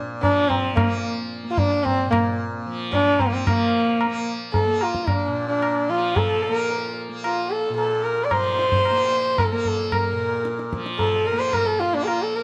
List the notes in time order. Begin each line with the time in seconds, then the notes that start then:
Already playing: A#2 F3 A#3
0.22 F3 D4, tabla tin, tabla ge
0.48 C4, tabla tin, tabla ge
0.75 A#3, tabla na, tabla ge
0.84 A#3
1.44 A#3
1.50 F4
1.58 D4, tabla tin, tabla ge
1.84 C4, tabla tin, tabla ge
2.06 A#2
2.11 A#3, tabla na, tabla ge
2.66 F3
2.92 D4, tabla tin, tabla ge
3.19 C4, tabla tin, tabla ge
3.26 A#3
3.33 C4
3.46 F3 A#3, tabla na, tabla ge
4.01 tabla na
4.07 A#3
4.53 A4, tabla tin, tabla ge
4.67 A#3
4.81 F4, tabla na
4.95 tabla ke
5.07 D4, tabla na, tabla ge
5.27 A#2
5.48 D4
5.62 tabla na
5.89 F3 F4
6.16 A4, tabla tin, tabla ge
6.43 A4
6.49 A#3
6.54 A#4
6.70 tabla tin
7.09 A#3
7.24 F4, tabla na
7.51 A4
7.70 A#2
7.77 A4, tabla tin
8.04 A#4
8.24 D5
8.31 F3 C5, tabla na, tabla ge
8.59 tabla te
8.72 tabla ge
8.85 tabla na
8.91 A#3
9.38 A#4, tabla na, tabla ge
9.44 A4
9.52 A#3 A#4
9.65 A4, tabla ge
9.92 A#4, tabla na, tabla ge
10.12 A#2
10.45 tabla te
10.59 tabla te
10.73 F3, tabla ke
10.86 tabla te
10.99 A4, tabla tin, tabla ge
11.26 A#4
11.32 A#3
11.39 C5
11.53 A#4, tabla na, tabla ge
11.66 A4
11.79 F4, tabla te
11.93 A#3 D4
12.03 A4, tabla na
12.08 F4
12.22 A4
12.36 A#4